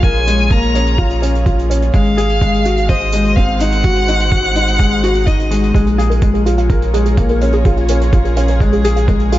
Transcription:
0.00 1.91 A#1 medium
0.00 0.27 G#3 medium
0.00 3.27 A#3 medium
0.00 0.75 C#4 medium
0.00 0.98 F4 medium
0.00 1.94 F4 medium
0.00 1.95 G#4 medium
0.00 2.91 G#4 medium
0.00 0.26 A#4 medium
0.00 1.94 C#5 medium
0.00 0.53 G#5 loud
0.00 kick medium
0.00 closed hi-hat soft
0.16 closed hi-hat soft
0.27 0.41 G#3 medium
0.27 closed hi-hat medium
0.38 closed hi-hat soft
0.51 0.65 A#3 medium
0.51 1.22 A#5 medium
0.51 kick medium
0.51 closed hi-hat soft
0.63 closed hi-hat soft
0.75 0.88 C#4 medium
0.75 closed hi-hat medium
0.86 closed hi-hat soft
0.98 1.12 F4 medium
0.98 kick medium
0.98 closed hi-hat soft
1.10 closed hi-hat soft
1.22 1.45 C#4 medium
1.22 closed hi-hat medium
1.35 closed hi-hat soft
1.46 1.69 F4 medium
1.46 kick medium
1.46 closed hi-hat soft
1.59 closed hi-hat soft
1.70 1.93 C#4 medium
1.70 closed hi-hat medium
1.82 closed hi-hat soft
1.93 5.72 G#1 medium
1.93 2.16 G#3 medium
1.93 5.75 G#3 medium
1.93 2.89 F5 loud
1.93 kick medium
1.93 closed hi-hat medium
2.05 closed hi-hat soft
2.17 2.31 G#4 medium
2.17 closed hi-hat medium
2.29 closed hi-hat soft
2.39 2.64 G#3 medium
2.39 6.88 D#4 medium
2.39 kick medium
2.39 closed hi-hat medium
2.54 closed hi-hat soft
2.65 2.79 F#4 medium
2.65 closed hi-hat medium
2.77 closed hi-hat soft
2.82 5.75 F#4 medium
2.88 3.12 C5 medium
2.88 3.37 D#5 medium
2.88 kick medium
2.88 closed hi-hat medium
2.98 5.75 C5 medium
2.98 closed hi-hat soft
3.12 3.27 G#3 medium
3.12 closed hi-hat medium
3.25 closed hi-hat soft
3.36 3.50 C4 medium
3.36 3.61 F5 medium
3.36 kick medium
3.36 closed hi-hat medium
3.48 closed hi-hat soft
3.59 3.74 D#4 medium
3.59 5.28 F#5 loud
3.59 closed hi-hat medium
3.72 closed hi-hat soft
3.84 3.98 F#4 medium
3.84 kick loud
3.84 closed hi-hat soft
3.96 closed hi-hat soft
4.08 4.31 D#4 medium
4.08 closed hi-hat medium
4.20 closed hi-hat soft
4.32 4.55 F#4 medium
4.32 kick medium
4.32 closed hi-hat soft
4.45 closed hi-hat soft
4.55 4.78 D#4 medium
4.55 closed hi-hat medium
4.67 closed hi-hat soft
4.79 5.02 G#3 medium
4.79 kick medium
4.79 closed hi-hat soft
4.92 closed hi-hat soft
5.03 5.17 F#4 medium
5.03 closed hi-hat medium
5.15 closed hi-hat soft
5.26 5.41 D#4 medium
5.26 5.74 D#5 medium
5.26 kick medium
5.26 closed hi-hat medium
5.39 closed hi-hat soft
5.51 5.73 G#3 medium
5.51 closed hi-hat medium
5.64 closed hi-hat soft
5.74 9.39 A#1 medium
5.74 5.97 G#3 medium
5.74 9.39 A#3 medium
5.74 5.79 G#4 medium
5.74 kick medium
5.74 closed hi-hat medium
5.84 9.39 F4 medium
5.84 5.93 G#4 medium
5.84 closed hi-hat soft
5.98 6.12 G#4 medium
5.98 6.05 F5 medium
5.98 closed hi-hat medium
6.10 6.14 A#4 medium
6.10 closed hi-hat soft
6.21 6.45 G#3 medium
6.21 9.39 C#5 medium
6.21 kick loud
6.21 closed hi-hat medium
6.34 6.38 G#4 medium
6.34 closed hi-hat soft
6.46 6.60 F4 medium
6.46 6.53 G#4 medium
6.46 closed hi-hat medium
6.58 6.64 F5 medium
6.58 closed hi-hat soft
6.70 9.39 G#4 medium
6.70 6.92 A#4 medium
6.70 6.74 A#4 medium
6.70 kick medium
6.70 closed hi-hat medium
6.82 closed hi-hat soft
6.94 7.07 G#3 medium
6.94 6.98 G#4 medium
6.94 closed hi-hat medium
7.06 7.12 G#4 medium
7.06 closed hi-hat soft
7.17 7.31 A#3 medium
7.17 7.24 F5 medium
7.17 kick medium
7.17 closed hi-hat soft
7.29 7.33 A#4 medium
7.29 closed hi-hat soft
7.41 7.55 C#4 medium
7.41 closed hi-hat medium
7.53 7.57 G#4 medium
7.53 closed hi-hat soft
7.65 7.79 F4 medium
7.65 7.72 G#4 medium
7.65 kick medium
7.65 closed hi-hat medium
7.77 7.84 F5 medium
7.77 closed hi-hat soft
7.88 8.12 C#4 medium
7.88 7.93 A#4 medium
7.88 closed hi-hat medium
8.01 closed hi-hat soft
8.12 8.36 F4 medium
8.12 8.17 G#4 loud
8.12 kick medium
8.12 closed hi-hat medium
8.25 8.31 G#4 medium
8.25 closed hi-hat soft
8.37 8.59 C#4 medium
8.37 8.43 F5 medium
8.37 closed hi-hat medium
8.48 8.53 A#4 medium
8.48 closed hi-hat soft
8.60 8.83 G#3 medium
8.60 kick loud
8.60 closed hi-hat soft
8.73 8.76 G#4 loud
8.73 closed hi-hat soft
8.84 8.98 G#4 medium
8.84 8.91 G#4 medium
8.84 closed hi-hat medium
8.96 9.03 F5 medium
8.96 closed hi-hat soft
9.08 9.31 G#3 medium
9.08 9.12 A#4 medium
9.08 kick medium
9.08 closed hi-hat medium
9.20 closed hi-hat soft
9.32 9.39 F4 medium
9.32 9.36 G#4 medium
9.32 closed hi-hat medium

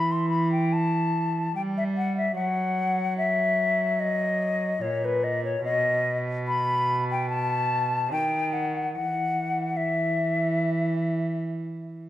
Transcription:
0.00 1.52 E3 medium
0.00 0.13 B5 medium
0.12 0.29 C6 medium
0.29 0.51 B5 medium
0.52 0.74 G5 medium
0.73 1.55 A5 medium
1.56 2.35 G3 medium
1.56 1.62 G5 medium
1.77 1.83 E5 medium
1.97 2.16 F#5 medium
2.17 2.35 E5 medium
2.35 4.78 F#3 medium
2.35 3.16 F#5 medium
3.18 4.01 E5 medium
4.00 4.83 D#5 medium
4.82 5.62 A#2 medium
4.82 5.06 C#5 medium
5.05 5.25 B4 medium
5.24 5.43 D#5 medium
5.45 5.64 C#5 medium
5.65 8.13 B2 medium
5.65 6.17 D#5 medium
6.48 7.04 B5 medium
7.12 7.29 G5 medium
7.30 8.10 A5 medium
8.11 8.96 D#3 medium
8.11 8.55 G5 medium
8.53 8.93 F#5 medium
8.93 12.08 E3 medium
8.93 9.78 F#5 medium
9.77 11.44 E5 medium

